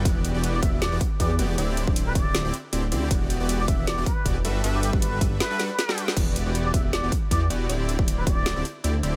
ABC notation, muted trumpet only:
X:1
M:4/4
L:1/16
Q:"Swing 16ths" 1/4=157
K:Em
V:1 name="Muted trumpet"
z4 z d e e d2 z2 d d z2 | z4 z B d4 z6 | z4 z d e e d2 B2 z4 | z G G z B2 z2 B3 B4 z |
z4 z d e e d2 z2 d d z2 | z4 z B d4 z6 |]